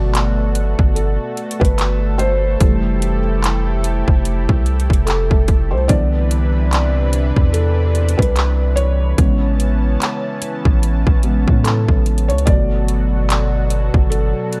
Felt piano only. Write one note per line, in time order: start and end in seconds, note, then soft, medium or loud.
0.00 2.63 F#3 medium
0.00 2.61 A3 soft
0.00 2.62 B3 medium
0.00 0.50 D5 loud
0.95 1.63 A4 medium
1.60 2.21 B4 medium
2.18 3.79 C5 loud
2.60 3.18 E3 medium
2.60 3.18 G3 medium
2.60 3.18 A3 medium
5.06 5.73 A4 medium
5.71 5.89 C5 medium
5.88 7.08 D3 medium
5.88 7.09 E3 soft
5.88 7.09 B3 medium
5.88 7.08 D5 loud
7.53 8.20 A4 medium
8.18 8.73 B4 medium
8.76 10.37 C#5 loud
9.18 10.37 C#3 medium
9.18 10.37 G#3 soft
9.18 10.38 B3 medium
11.24 11.61 C#3 soft
11.24 11.61 G#3 soft
11.24 11.61 B3 medium
11.63 12.25 A4 medium
12.28 12.47 C#5 medium
12.46 14.60 B2 medium
12.46 14.60 F#3 medium
12.46 14.60 A3 soft
12.46 13.66 D5 loud
14.10 14.60 A4 medium